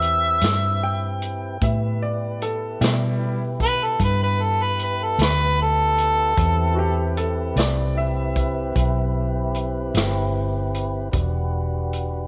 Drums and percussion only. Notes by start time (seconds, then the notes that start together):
0.02 closed hi-hat
0.41 snare, closed hi-hat
1.22 closed hi-hat
1.62 kick, closed hi-hat
2.42 closed hi-hat
2.81 snare, closed hi-hat
3.60 kick, closed hi-hat
4.00 kick, closed hi-hat
4.79 closed hi-hat
5.19 snare, closed hi-hat
5.98 closed hi-hat
6.37 kick, closed hi-hat
7.17 closed hi-hat
7.57 snare, closed hi-hat
8.36 kick, closed hi-hat
8.76 kick, closed hi-hat
9.55 closed hi-hat
9.95 snare, closed hi-hat
10.75 closed hi-hat
11.13 kick, closed hi-hat
11.93 closed hi-hat